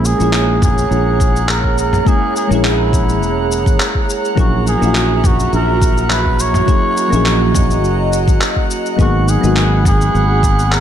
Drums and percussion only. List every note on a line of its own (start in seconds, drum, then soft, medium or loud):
0.05 shaker medium
0.20 shaker soft
0.33 clap loud
0.33 shaker soft
0.62 kick medium
0.62 mid tom medium
0.62 shaker medium
0.78 shaker soft
0.92 shaker soft
1.20 kick loud
1.20 shaker medium
1.36 shaker soft
1.49 clap loud
1.49 shaker soft
1.64 kick medium
1.78 shaker medium
1.93 mid tom medium
1.93 shaker soft
2.06 kick loud
2.06 shaker soft
2.36 shaker medium
2.52 shaker soft
2.65 clap loud
2.65 shaker soft
2.93 kick loud
2.93 shaker medium
3.09 shaker soft
3.23 shaker soft
3.52 shaker medium
3.66 kick loud
3.66 shaker soft
3.80 clap loud
3.80 shaker soft
3.95 kick medium
4.10 shaker medium
4.25 shaker soft
4.37 kick loud
4.37 shaker soft
4.67 shaker medium
4.83 shaker soft
4.95 clap medium
4.95 shaker soft
5.24 kick loud
5.24 mid tom medium
5.24 shaker medium
5.40 shaker soft
5.53 shaker soft
5.82 kick loud
5.82 shaker medium
5.97 shaker soft
6.10 clap loud
6.10 shaker soft
6.26 kick medium
6.40 shaker medium
6.54 mid tom medium
6.54 shaker soft
6.68 kick loud
6.68 shaker soft
6.97 shaker medium
7.13 shaker soft
7.26 clap medium
7.26 shaker soft
7.54 kick loud
7.54 mid tom medium
7.54 shaker medium
7.71 shaker soft
7.84 shaker soft
8.13 shaker medium
8.28 kick loud
8.28 shaker soft
8.41 clap medium
8.41 shaker soft
8.57 kick medium
8.71 shaker medium
8.86 shaker soft
8.99 kick loud
8.99 shaker soft
9.28 shaker medium
9.44 shaker soft
9.56 clap medium
9.56 shaker soft
9.85 kick loud
9.85 mid tom medium
9.85 shaker medium
10.01 shaker soft
10.15 shaker soft
10.43 kick medium
10.43 shaker medium
10.59 shaker soft
10.72 clap medium
10.72 shaker soft